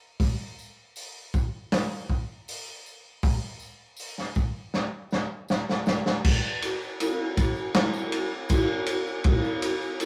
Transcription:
0.20 kick, open hi-hat, tambourine
0.59 tambourine
0.96 open hi-hat, tambourine
1.34 kick, tambourine
1.72 snare, open hi-hat, tambourine
2.09 kick, tambourine
2.48 open hi-hat, tambourine
2.86 tambourine
3.23 kick, open hi-hat, tambourine
3.60 tambourine
3.97 open hi-hat, tambourine
4.18 snare
4.35 kick, tambourine
4.74 snare, tambourine
5.11 snare, tambourine
5.48 snare, tambourine
5.69 snare
5.86 snare, tambourine
6.06 snare
6.24 kick, crash, tambourine
6.44 tambourine
6.62 ride, tambourine
6.82 tambourine
7.00 ride, tambourine
7.37 kick, ride, tambourine
7.56 tambourine
7.74 snare, ride, tambourine
7.94 tambourine
8.12 ride
8.49 kick, ride, tambourine
8.86 ride, tambourine
9.07 tambourine
9.24 kick, ride, tambourine
9.44 tambourine
9.62 ride, tambourine
9.82 tambourine
10.00 ride, tambourine

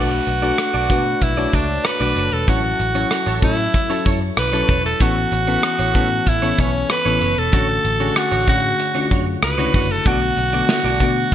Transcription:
Already playing: B1 A3 D4 F#4 A4 B4
0.11 muted clean electric guitar stroke
0.27 B1, muted clean electric guitar stroke, closed hi-hat
0.42 A3 D4 F#4 A4 B4 D5
0.58 cross-stick, closed hi-hat
0.74 B1 F#4 A4 D5
0.90 B2 A3 D4 F#4 A4 B4 D5, kick, closed hi-hat
1.06 muted clean electric guitar stroke
1.22 B1 E4, muted clean electric guitar stroke, kick, closed hi-hat
1.37 A3 D4 F#4 A4 C#5 D5
1.53 C#2 D4 F#4 A4 D5, kick, closed hi-hat
1.69 muted clean electric guitar stroke
1.85 B4, muted clean electric guitar stroke, cross-stick, closed hi-hat
2.00 B1 A3 D4 F#4 A4 B4 D5
2.16 F#1 F#4 A4 D5, closed hi-hat
2.32 E1 A4, muted clean electric guitar stroke
2.47 A1 F#3 C#4 E4 F#4 A4 C#5, kick, closed hi-hat
2.64 muted clean electric guitar stroke
2.79 A1, muted clean electric guitar stroke, closed hi-hat
2.95 F#3 C#4 E4 A4 C#5
3.11 muted clean electric guitar stroke, cross-stick, closed hi-hat
3.26 A1 E4 A4 C#5
3.42 A2 F#3 C#4 E4 A4 C#5, kick, closed hi-hat
3.74 muted clean electric guitar stroke, kick, closed hi-hat
3.89 F#3 C#4 E4 A4 C#5
4.05 F#2 E4 A4 C#5, kick, closed hi-hat
4.21 muted clean electric guitar stroke
4.37 B1 B4, muted clean electric guitar stroke, cross-stick, closed hi-hat
4.52 F#3 C#4 E4 A4 C#5
4.69 E1 E4 A4 C#5, kick, closed hi-hat
4.85 A4, muted clean electric guitar stroke
5.00 A1 E3 B3 C#4 E4 F#4 A4 B4 C#5, kick, closed hi-hat
5.16 muted clean electric guitar stroke
5.32 A1, muted clean electric guitar stroke, closed hi-hat
5.47 E3 B3 C#4 E4 A4 B4 C#5
5.63 cross-stick, closed hi-hat
5.79 A1 E4 B4 C#5
5.95 A2 E3 B3 C#4 E4 A4 B4 C#5, kick, closed hi-hat
6.11 muted clean electric guitar stroke
6.26 A1 E4, muted clean electric guitar stroke, kick, closed hi-hat
6.42 E3 B3 C#4 E4 A4 B4 C#5
6.58 B1 C#4 E4 B4 C#5, kick, closed hi-hat
6.74 muted clean electric guitar stroke
6.90 B4, muted clean electric guitar stroke, cross-stick, closed hi-hat
7.05 A1 E3 B3 C#4 E4 A4 B4 C#5
7.21 F#1 E4 B4 C#5, closed hi-hat
7.37 E1 A4
7.53 A1 D3 A3 C#4 D4 F#4 C#5, kick, closed hi-hat
7.69 muted clean electric guitar stroke
7.84 A1, muted clean electric guitar stroke, closed hi-hat
8.00 D3 A3 C#4 D4 F#4 G#4 C#5
8.16 F#4, cross-stick, closed hi-hat
8.32 A1 D4 F#4 C#5
8.47 A2 D3 A3 C#4 D4 F#4 C#5, kick, closed hi-hat
8.63 muted clean electric guitar stroke
8.79 muted clean electric guitar stroke, closed hi-hat
8.95 D3 A3 C#4 D4 F4 F#4 C#5
9.02 F#4
9.11 F#2 D4 F#4 C#5, kick, closed hi-hat
9.27 muted clean electric guitar stroke
9.42 C#2 B4, muted clean electric guitar stroke, cross-stick, closed hi-hat
9.58 D3 A3 C#4 D4 E4 F#4 C#5
9.74 F#1 D4 F#4 C#5, kick, open hi-hat
9.92 A4
10.05 B1 D3 A3 B3 F#4 A4 D5, kick, closed hi-hat
10.21 muted clean electric guitar stroke
10.37 B1, muted clean electric guitar stroke, closed hi-hat
10.53 D3 A3 B3 F#4 A4 D5
10.69 snare, closed hi-hat
10.84 B1 F#4 A4 D5
11.00 B2 D3 A3 B3 F#4 A4 D5, kick, closed hi-hat
11.16 muted clean electric guitar stroke

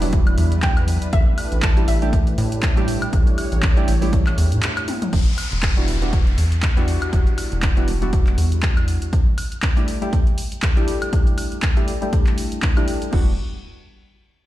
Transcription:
Already playing: E1 E3 D4 E4 B4
0.01 F#3 G3 B3 D4 E4, open hi-hat
0.13 kick, closed hi-hat
0.27 closed hi-hat, high woodblock
0.38 E2, open hi-hat
0.52 closed hi-hat
0.62 G5, kick, clap, closed hi-hat
0.77 closed hi-hat, high woodblock
0.88 open hi-hat
1.02 closed hi-hat
1.13 A1 A3 G4 E5, kick, closed hi-hat
1.38 open hi-hat, high woodblock
1.52 A1, closed hi-hat
1.62 A5, kick, clap, closed hi-hat
1.77 G3 A3 D4 E4 G4, closed hi-hat
1.88 A1 E5, open hi-hat
2.02 G3 A3 D4 E4 G4, closed hi-hat
2.13 kick, closed hi-hat
2.27 closed hi-hat
2.38 A2, open hi-hat
2.52 closed hi-hat
2.63 kick, clap, closed hi-hat
2.77 G3 A3 D4 E4 G4, closed hi-hat
2.88 open hi-hat
3.02 closed hi-hat, high woodblock
3.13 A1 C#5, kick, closed hi-hat
3.27 closed hi-hat
3.38 open hi-hat, high woodblock
3.52 A1, closed hi-hat
3.63 kick, clap, closed hi-hat
3.77 G3 A3 D4 E4 G4, closed hi-hat
3.88 A1, open hi-hat
4.01 G3 A3 D4 E4 G4, open hi-hat
4.13 kick, closed hi-hat
4.27 clap, closed hi-hat, high woodblock
4.38 E2, open hi-hat
4.52 A2, closed hi-hat
4.63 clap, closed hi-hat
4.77 closed hi-hat, high woodblock
4.88 open hi-hat, high tom
5.02 closed hi-hat, mid tom
5.13 E1, kick, closed hi-hat, crash, downlifter
5.38 open hi-hat, high woodblock
5.52 E1, closed hi-hat
5.63 kick, clap, closed hi-hat
5.77 G3 B3 D4 E4 F#4, closed hi-hat
5.88 E1, open hi-hat
6.02 G3 B3 D4 E4 F#4, closed hi-hat
6.13 kick, closed hi-hat
6.27 closed hi-hat
6.38 E2, open hi-hat
6.52 closed hi-hat
6.63 kick, clap, closed hi-hat
6.76 G3 B3 D4 E4 F#4, closed hi-hat
6.88 open hi-hat
7.02 closed hi-hat, high woodblock
7.13 E1, kick, closed hi-hat
7.27 closed hi-hat
7.38 open hi-hat, high woodblock
7.52 E1, closed hi-hat
7.62 kick, clap, closed hi-hat
7.77 G3 B3 D4 E4 F#4, closed hi-hat
7.88 E1, open hi-hat
8.01 G3 B3 D4 E4 F#4, closed hi-hat
8.13 kick, closed hi-hat
8.27 clap, closed hi-hat
8.38 E2, open hi-hat
8.52 closed hi-hat
8.63 kick, clap, closed hi-hat
8.77 closed hi-hat, high woodblock
8.88 open hi-hat
9.02 closed hi-hat
9.13 kick, closed hi-hat
9.38 open hi-hat, high woodblock
9.52 closed hi-hat
9.62 kick, clap, closed hi-hat
9.77 G3 A3 D4 E4 G4, closed hi-hat
9.88 open hi-hat
10.01 G3 A3 D4 E4 G4, closed hi-hat
10.13 kick, closed hi-hat
10.27 closed hi-hat
10.38 open hi-hat
10.52 closed hi-hat
10.62 kick, clap, closed hi-hat
10.76 G3 A3 D4 E4 G4, closed hi-hat
10.88 open hi-hat
11.02 closed hi-hat, high woodblock
11.13 kick, closed hi-hat
11.27 closed hi-hat
11.38 open hi-hat, high woodblock
11.52 closed hi-hat
11.62 kick, clap, closed hi-hat
11.76 G3 A3 D4 E4 G4, closed hi-hat
11.88 open hi-hat
12.01 G3 A3 D4 E4 G4, closed hi-hat
12.13 kick, closed hi-hat
12.27 clap, closed hi-hat
12.38 open hi-hat
12.52 closed hi-hat
12.62 kick, clap, closed hi-hat
12.77 G3 A3 D4 E4 G4, closed hi-hat, high woodblock
12.88 open hi-hat
13.02 closed hi-hat
13.12 E1 G3 B3 D4 E4 F#4, kick, crash

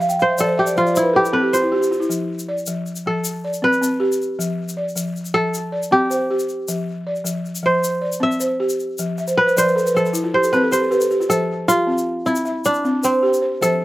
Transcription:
Already playing: F3 E4
0.00 F5, shaker
0.09 G5, shaker
0.19 C5 F5, shaker
0.28 E5
0.38 F3 A4 D5, shaker
0.48 C5
0.58 G4 E5
0.66 D5, shaker
0.76 F3 F4 C5, shaker
0.85 D5, shaker
0.94 E4 C5, shaker
1.03 B4
1.13 G4 A4
1.23 G4, shaker
1.33 C4 A4 B4
1.42 G4
1.53 F4 C5, shaker
1.62 E4
1.72 F4 G4
1.81 G4, shaker
1.91 F4, shaker
2.00 E4, shaker
2.09 F3, shaker
2.39 shaker
2.49 D5
2.58 shaker
2.66 F3, shaker
2.86 shaker
2.96 shaker
3.06 F3 A4
3.25 shaker
3.45 D5
3.53 shaker
3.62 C4 B4
3.73 shaker
3.81 C4, shaker
4.00 G4
4.12 shaker
4.22 shaker
4.39 F3, shaker
4.69 shaker
4.77 D5
4.89 shaker
4.96 F3, shaker
5.16 shaker
5.25 shaker
5.34 F3 A4
5.54 shaker
5.72 D5
5.83 shaker
5.91 C4 G4
6.10 C5, shaker
6.30 G4
6.39 shaker
6.49 shaker
6.68 F3, shaker
7.07 D5
7.16 shaker
7.24 F3, shaker
7.45 shaker
7.55 shaker
7.63 F3 C5
7.84 shaker
8.01 D5
8.12 shaker
8.20 C4 E5
8.32 shaker
8.40 C5, shaker
8.60 G4
8.69 shaker
8.80 shaker
8.98 F3, shaker
9.18 E5, shaker
9.28 C5, shaker
9.37 B4
9.47 C5, shaker
9.57 F3 C5 D5, shaker
9.66 B4, shaker
9.76 A4, shaker
9.86 B4, shaker
9.94 F3 A4 C5, shaker
10.06 A4, shaker
10.13 E4, shaker
10.24 F4
10.34 G4 C5
10.43 A4, shaker
10.53 C4 B4, shaker
10.63 A4
10.71 G4 C5, shaker
10.81 A4
10.91 G4 B4, shaker
11.01 A4, shaker
11.11 G4, shaker
11.20 F4, shaker
11.29 F3 A4 C5, shaker
11.68 F4 G4, shaker
11.87 C4
11.98 shaker
12.26 C4 E4, shaker
12.35 shaker
12.45 E5, shaker
12.65 D4, shaker
12.74 shaker
12.85 C4, shaker
13.03 C4 C5, shaker
13.23 G4
13.34 shaker
13.42 C5
13.61 F3 A4 C5, shaker

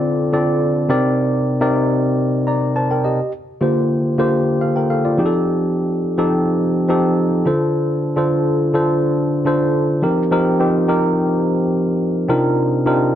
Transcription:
Already playing: D3 C4 F4 A4 D5
0.32 D3 C4 F4 A4 D5
0.89 C3 C4 D#4 A#4 D5
1.60 C3 C4 D#4 A#4 D5
2.47 D5 A#5
2.76 C5 A5
2.91 A#4 G5
3.04 G4 D#5
3.61 D3 A#3 F4 G4 C5
4.18 D3 A#3 F4 G4 C5
4.61 A4 F5
4.76 A#4 G5
4.90 A4 F5
5.05 F4 D5
5.17 F3 C4 D#4 G4 G#4
5.26 A4
6.18 F3 C4 D#4 G4 A4
6.88 F3 C4 D#4 G4 A4
7.45 D3 D4 F4 A4 C5
8.16 D3 D4 F4 A4 C5
8.73 D3 D4 F4 A4 C5
9.45 D3 D4 F4 A4 C5
10.02 F3 C4 D#4 G4 A#4
10.31 F3 C4 D#4 G4 A#4
10.59 F3 C4 D#4 G4 C5
10.88 F3 C4 D#4 G4 A#4
12.28 C3 C4 D4 D#4 F4 A#4
12.85 C3 C4 D4 D#4 F4 A#4

